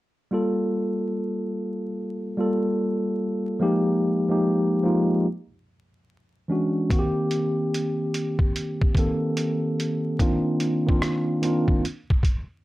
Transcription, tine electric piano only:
0.31 G3 A#3 F4 A4
2.37 G3 A#3 F4 A4
3.59 F3 G#3 A#3 D#4 G4
4.29 F3 G#3 A#3 D#4 G4
4.83 F3 G#3 A#3 D#4 F4
6.48 E3 G#3 C#4 D4 F#4
6.89 D#3 A#3 C4 F#4
6.99 G4
8.95 D#3 A#3 C4 A4
10.19 D#3 A#3 C4 D4 F4
10.86 D#3 A#3 C4 D4 F4
11.42 D#3 A#3 C4 D4 F4

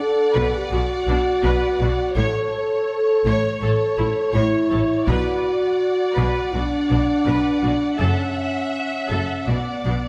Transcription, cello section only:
0.36 B2
0.72 B2
1.08 B2
1.44 B2
1.81 B2
2.17 A2
3.26 A2
3.62 A2
3.99 A2
4.35 A2
4.72 A2
5.08 B2
6.18 B2
6.54 B2
6.91 B2
7.27 B2
7.64 B2
8.01 F#2
9.12 F#2
9.48 B2
9.86 B2

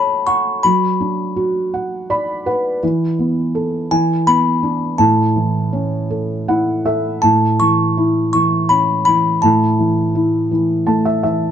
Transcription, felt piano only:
Already playing: F#3 C#4 A4 C#5 F#5
0.27 F#5
0.64 F#3
1.00 D4
1.36 F#4
1.74 F#5
2.10 D5 B5
2.46 B4 F#5
2.83 E3
3.19 B3
3.55 A4
3.91 E3
4.27 B3
4.63 D4
4.99 A2
5.36 E3
5.73 C#4
6.10 A4
6.48 E4 F#5
6.86 A4 E5
7.23 A2
7.60 E3
7.97 E4
8.34 E3
8.70 C#4
9.07 E3
9.43 A2
9.79 E3
10.15 E4
10.51 E3
10.87 A3 A5
11.05 E5
11.23 E3 E5

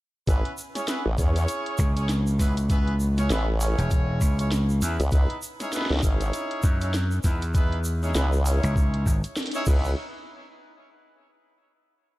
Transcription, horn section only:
0.28 B3 C#4 E4 G#4 B4
0.76 C#4 E4 G#4 C#5
0.88 B3 C#4 E4 G#4 B4
1.18 C#4 E4 G#4 C#5
1.97 C#4 E4 G#4 C#5
2.39 B3 C#4 E4 G#4 B4
2.70 B3 C#4 E4 G#4 B4
3.18 C#4 E4 G#4 C#5
3.30 B3 C#4 E4 G#4 B4
3.61 C#4 E4 G#4 C#5
4.39 C#4 E4 G#4 C#5
4.82 B3 C#4 E4 G#4 B4
5.12 B3 D#4 E4 G#4 B4
5.60 C#4 D#4 E4 G#4 C#5
5.73 B3 D#4 E4 G#4 B4
6.03 C#4 D#4 E4 G#4 C#5
6.82 C#4 D#4 E4 G#4 C#5
7.24 B3 D#4 E4 G#4 B4
7.55 B3 D#4 E4 G#4 B4
8.03 C#4 D#4 E4 G#4 C#5
8.15 B3 D#4 E4 G#4 B4
8.46 C#4 D#4 E4 G#4 C#5
9.54 C#4 D#4 E4 G#4 C#5
9.67 B3 D#4 E4 G#4 B4

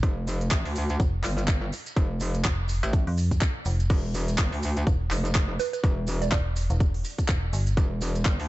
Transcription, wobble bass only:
0.03 F1
0.51 A1
0.65 D2
1.24 G1
1.96 F1
2.83 A1
3.90 E1
4.38 G1
4.52 D2
5.11 F1
5.84 E1
7.77 E1
8.26 G1
8.40 D2

